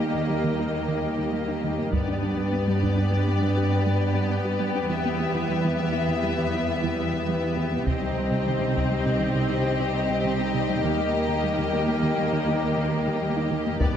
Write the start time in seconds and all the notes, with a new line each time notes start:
Already playing: D#2 G3 A#3 D#4 G4 A#4 D#5
0.15 D#3
0.29 G3
0.44 D#3
0.59 D#4
0.88 D#3
1.19 D#3
1.33 G3
1.48 D#4
1.64 D#3
1.79 A#3
1.92 G2 G3 B3 D4 G4 B4 D5, taiko
2.08 D4
2.23 D4
2.37 G3
2.53 B3
2.68 G3
2.83 D4, taiko
2.97 D4
3.12 G3
3.27 B3
3.42 G3
3.57 G4
3.86 G3
4.15 G3
4.30 B3
4.45 G4
4.60 G3
4.75 D4
4.90 E2 E3 E4 E5
5.05 B3
5.20 B3
5.35 E3
5.50 G3
5.65 E3
5.79 B3
5.93 B3
6.09 E3
6.23 G3
6.39 E3
6.54 E4
6.84 E3
7.14 E3
7.28 G3
7.43 E4
7.57 E3
7.72 B3
7.87 C2 C3 G3 C4 D#4 G4 C5 D#5, taiko
8.02 G3
8.17 G3
8.31 C3
8.47 D#3
8.61 C3
8.76 G3, taiko
8.91 G3
9.06 C3
9.20 D#3
9.36 C3
9.50 C4
9.80 C3
10.10 C3
10.25 D#3
10.40 C4
10.54 C3
10.69 G3
10.84 D#2 D#3 A#3 A#4
10.99 A#3
11.14 A#3
11.29 D#3
11.44 G3
11.58 D#3
11.73 A#3
11.88 A#3
12.03 D#3
12.18 G3
12.33 D#3
12.48 D#4
12.78 D#3
13.08 D#3
13.22 G3
13.37 D#4
13.51 D#3
13.67 A#3
13.81 G2 G3 B3 D4 G4 B4 D5, taiko